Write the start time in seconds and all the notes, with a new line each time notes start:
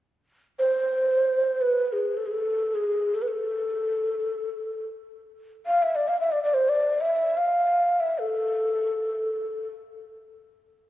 0.59 C5
1.61 B4
1.93 G#4
2.17 A4
2.26 G#4
2.31 A4
2.75 G#4
3.15 A4
3.22 B4
3.28 A4
5.66 F5
5.82 E5
5.96 D5
6.09 F5
6.20 E5
6.32 D5
6.43 D5
6.54 C5
6.69 D5
7.01 E5
7.37 F5
8.00 E5
8.19 A4